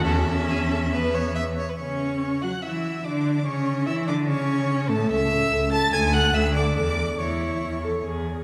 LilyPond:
<<
  \new Staff \with { instrumentName = "Violin" } { \time 4/4 \key a \major \tempo 4 = 142 e''2. r4 | cis'''4. fis'''8 e'''4 d'''4 | cis'''4 e'''8 d'''8 cis'''4. a''8 | e'''4. a'''8 gis'''8 fis'''8 e'''8 d'''8 |
d'''4 cis'''2 r4 | }
  \new Staff \with { instrumentName = "Violin" } { \time 4/4 \key a \major a'4 gis'8 a'8 b'8 cis''8 e''8 cis''16 b'16 | cis''4. fis''8 e''4 d''4 | cis''4 e''8 d''8 cis''4. a'8 | e''4. a''8 gis''8 fis''8 e''8 d''8 |
d''4 cis''2 r4 | }
  \new Staff \with { instrumentName = "Viola" } { \time 4/4 \key a \major cis'2 b4. r8 | cis'4. fis'8 e'4 d'4 | cis'4 e'8 d'8 cis'4. a8 | a'8 a'8 a'8 a'8 a'8 a'8 a'8 a'8 |
a'8 a'8 e'4. a'8 gis'4 | }
  \new Staff \with { instrumentName = "Cello" } { \clef bass \time 4/4 \key a \major e,2.~ e,8 r8 | cis4. fis8 e4 d4 | cis4 e8 d8 cis4. a,8 | cis,4 cis,4 d,4 d,4 |
e,4 e,4 e,4 e,4 | }
>>